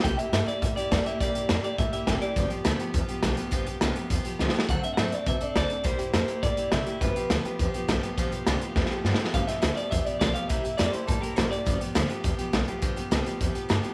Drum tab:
HH |x--x--x--x--x--x--x--x--|x--x--x--x--x--x--x--x--|x--x--x--x--x--x--x--x--|x--x--x--x--x--x--------|
SD |------o-----------o-----|------o-----------o-----|------o-----------o-----|------o-----------o-o-o-|
BD |o-----------o-----o-----|o-----------o-----o-----|o-----------o-----o-----|o-----------o-----------|

HH |x--x--x--x--x--x--x--x--|x--x--x--x--x--x--x--x--|x--x--x--x--x--x--x--x--|x--x--x--x--------------|
SD |------o-----------o-----|------o-----------o-----|------o-----------o-----|------o-----o-o---o-o-o-|
BD |o-----------o-----o-----|o-----------o-----o-----|o-----------o-----o-----|o-----------o-----------|

HH |x--x--x--x--x--x--x--x--|x--x--x--x--x--x--x--x--|x--x--x--x--x--x--x--x--|x--x--x--x--x--x--x--x--|
SD |---o--o-----------o-----|------o-----------o-----|------o-----------o-----|------o-----------o-----|
BD |o-----------o-----o-----|o-----------o-----o-----|o-----------o-----o-----|o-----------o-----------|